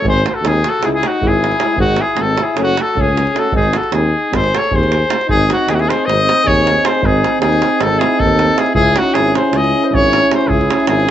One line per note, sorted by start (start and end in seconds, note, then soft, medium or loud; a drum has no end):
0.01 0.24 G#1 loud
0.01 0.17 G#3 medium
0.01 0.19 C4 medium
0.05 0.26 G#4 medium
0.05 0.27 C5 loud
0.05 davul low medium
0.16 davul high soft
0.26 0.34 G#4 soft
0.26 0.36 C5 medium
0.26 davul high medium
0.33 0.47 F#4 medium
0.33 0.49 A4 medium
0.41 0.64 D#2 medium
0.41 0.58 G#3 medium
0.41 0.59 C4 medium
0.41 davul high medium
0.46 0.68 D#4 medium
0.46 0.71 G#4 medium
0.64 0.87 F#4 medium
0.64 davul high medium
0.69 0.86 A4 medium
0.81 1.03 C#2 medium
0.81 0.98 G#3 medium
0.81 0.98 E4 medium
0.81 0.87 G#4 medium
0.81 davul high medium
0.86 0.88 D#4 medium
0.86 0.95 E4 medium
0.95 1.07 E4 medium
0.95 1.08 G#4 loud
1.03 1.25 D#4 medium
1.03 1.29 F#4 medium
1.03 davul high medium
1.21 1.52 G#1 medium
1.21 1.37 G#3 medium
1.21 1.37 E4 medium
1.21 1.78 E4 medium
1.21 davul low medium
1.28 1.80 G#4 loud
1.44 davul high medium
1.52 davul high soft
1.58 1.75 G#3 medium
1.58 1.74 E4 medium
1.58 davul high medium
1.77 1.99 G#1 loud
1.77 1.95 G#3 medium
1.77 1.93 C4 medium
1.77 2.01 D#4 medium
1.77 2.03 F#4 loud
1.77 davul low medium
1.88 davul high soft
1.96 2.22 E4 medium
1.96 davul high medium
2.01 2.23 G#4 medium
2.16 2.39 G#1 medium
2.16 2.33 G#3 medium
2.16 2.33 C4 medium
2.16 2.42 D#4 medium
2.16 davul high medium
2.22 2.44 A4 loud
2.37 2.58 E4 medium
2.37 davul high medium
2.43 2.60 G#4 medium
2.55 2.78 F#1 medium
2.55 2.72 A3 medium
2.55 2.71 C#4 medium
2.55 davul high medium
2.59 2.80 C#4 medium
2.63 2.83 F#4 loud
2.77 3.00 F#4 medium
2.77 davul high medium
2.81 3.02 A4 medium
2.94 3.27 C#2 medium
2.94 3.10 A3 medium
2.94 3.11 C#4 medium
2.94 3.39 C#4 medium
2.94 davul low medium
3.01 3.40 G#4 medium
3.17 davul high medium
3.27 davul high soft
3.33 3.49 A3 medium
3.33 3.50 C#4 medium
3.33 davul high medium
3.38 3.55 F#4 medium
3.38 3.55 A4 medium
3.51 3.75 G#1 medium
3.51 3.67 G#3 medium
3.51 3.69 C4 medium
3.51 davul low loud
3.55 3.78 D#4 medium
3.55 3.79 G#4 medium
3.63 davul high soft
3.73 3.98 F#4 medium
3.73 3.95 A4 medium
3.73 davul high medium
3.83 davul high soft
3.90 4.14 D#2 medium
3.90 4.07 G#3 medium
3.90 4.09 C4 medium
3.90 4.37 G#4 medium
3.90 davul high medium
3.97 4.37 D#4 medium
4.31 4.53 G#1 medium
4.31 4.47 G#3 medium
4.31 4.47 C4 medium
4.31 davul high medium
4.31 davul low medium
4.35 4.56 G#4 medium
4.35 4.59 C5 loud
4.44 davul high soft
4.55 4.75 A4 medium
4.55 4.77 C#5 medium
4.55 davul high medium
4.64 davul high soft
4.71 5.02 D#2 medium
4.71 4.86 G#3 medium
4.71 4.86 C4 soft
4.71 5.11 G#4 medium
4.71 davul low medium
4.75 5.30 C5 medium
4.83 davul high soft
4.92 davul high medium
5.09 5.16 G#3 soft
5.09 5.17 C4 soft
5.09 davul high medium
5.21 davul high soft
5.27 5.50 G#1 loud
5.27 8.76 C4 medium
5.27 5.46 D#4 medium
5.27 8.75 D#4 medium
5.27 5.49 G#4 loud
5.27 davul low medium
5.47 5.66 D#4 medium
5.47 davul high medium
5.53 5.71 F#4 medium
5.66 5.89 D#2 medium
5.66 5.69 D#4 medium
5.66 5.76 D#4 medium
5.66 5.76 G#4 medium
5.66 davul high medium
5.74 5.88 E4 medium
5.74 5.81 F#4 medium
5.79 5.91 G#4 medium
5.79 davul high soft
5.87 6.07 G#4 medium
5.87 6.07 C5 medium
5.87 davul high medium
6.05 6.29 G#1 medium
6.05 6.46 C5 medium
6.05 6.49 D#5 loud
6.09 davul high medium
6.20 davul high soft
6.29 davul high medium
6.44 6.76 D#2 medium
6.44 6.82 G#4 medium
6.44 6.87 C#5 loud
6.44 davul low medium
6.58 davul high soft
6.67 davul high medium
6.82 7.04 G#4 medium
6.82 davul high medium
6.86 7.07 C5 medium
6.95 davul high soft
7.01 7.23 G#1 loud
7.01 7.39 D#4 medium
7.01 davul low medium
7.06 7.40 G#4 loud
7.24 davul high medium
7.40 7.62 D#2 medium
7.40 7.79 D#4 medium
7.40 7.84 G#4 loud
7.40 davul high medium
7.53 davul high soft
7.62 davul high medium
7.79 8.01 G#1 medium
7.79 8.00 D#4 medium
7.79 8.01 A4 loud
7.79 davul high medium
7.99 8.19 E4 medium
7.99 8.21 G#4 medium
7.99 davul high medium
8.18 8.50 D#2 medium
8.18 8.57 D#4 medium
8.18 8.60 A4 loud
8.18 davul low medium
8.29 davul high soft
8.39 davul high medium
8.56 8.73 E4 medium
8.56 8.74 G#4 medium
8.56 davul high medium
8.66 davul high soft
8.73 8.96 C#2 loud
8.73 11.11 C#4 medium
8.73 8.95 E4 medium
8.73 11.11 E4 medium
8.73 8.99 G#4 loud
8.73 davul low medium
8.93 9.14 D#4 medium
8.93 davul high medium
8.98 9.15 F#4 loud
9.13 9.36 G#1 medium
9.13 9.32 E4 medium
9.13 9.35 G#4 loud
9.13 davul high medium
9.28 davul high soft
9.33 9.52 G#4 medium
9.33 9.58 C5 medium
9.33 davul high medium
9.52 9.74 C#2 medium
9.52 9.86 G#4 medium
9.52 davul high medium
9.56 9.88 D#5 loud
9.64 davul high soft
9.84 9.94 C5 medium
9.84 9.96 D#5 medium
9.90 10.21 G#1 medium
9.90 10.30 G#4 medium
9.90 10.31 C#5 loud
9.90 davul low loud
10.04 davul high soft
10.13 davul high medium
10.31 10.49 G#4 medium
10.31 10.50 C5 medium
10.31 davul high medium
10.41 davul high soft
10.47 10.69 C#2 medium
10.47 10.85 E4 medium
10.47 10.87 G#4 loud
10.47 davul low medium
10.61 davul high soft
10.71 davul high medium
10.80 davul high soft
10.86 11.08 G#1 medium
10.86 11.11 E4 medium
10.86 11.11 G#4 loud
10.86 davul high medium
11.00 davul high soft